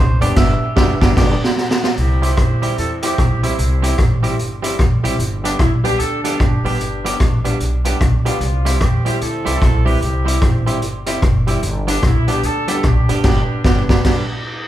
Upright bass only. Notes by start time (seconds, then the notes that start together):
Already playing: C2
0.21 F#1
0.37 G1
0.77 G1
1.01 G1
1.17 G1
1.97 C2
2.37 D2
2.78 E2
3.18 B1
3.58 C2
3.99 A1
4.39 G1
4.79 A1
5.04 B1
5.19 G1
5.59 B1
5.99 D2
6.40 G1
6.64 A1
6.80 G1
7.20 A1
7.60 B1
8.01 B1
8.41 C2
9.21 D2
9.46 C2
9.62 B1
10.02 C2
10.42 A1
10.82 G1
11.23 F#1
11.63 G1
12.03 B1
12.44 D2
12.84 B1
13.08 G1
13.24 G1
13.64 G1
13.89 G1
14.05 G1